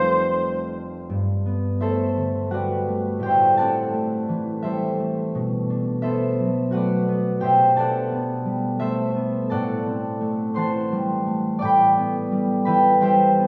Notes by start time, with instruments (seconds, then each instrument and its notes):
Already playing: harp F1 F2 G3 A3 C4 D#4 F4 G4 A4 B4 C5 D5 F5 G5 A5, cor anglais C5
1.10 harp G2
1.46 harp B3
1.81 harp A3 A4 C5 E5
2.17 harp D3
2.50 harp G3 F#4 B4 D5 F#5
2.88 harp A3
3.20 harp A2 G4 G5
3.26 harp C5 E5
3.57 harp C4 A4 D5 F#5 A5
3.94 harp A3
4.29 harp E3
4.62 harp G3 A4 C5 E5
5.00 harp A3
5.35 harp B2
5.70 harp D4
6.02 harp B3 A4 C5 E5
6.40 harp F#3
6.71 harp A3 F#4 B4 F#5
6.77 harp D5
7.09 harp B3
7.40 harp B2 G4 C5 E5 G5
7.75 harp D4 A4 D5 A5
7.80 harp F#5
8.12 harp B3
8.45 harp G3
8.80 harp A3 A4 C5 E5
9.16 harp B3
9.50 harp A2 A4 D5 F#5 A5
9.86 harp C4
10.21 harp A3
10.54 harp E3 C5 F#5 C6
10.58 harp A5
10.92 harp G3
11.27 harp A3
11.59 harp A2 D5 G5 D6
11.65 harp B5
11.97 harp B3
12.32 harp G3
12.65 harp E3 B4 E5 G5 B5
13.01 harp G3 G4 C5 E5 G5
13.39 harp B3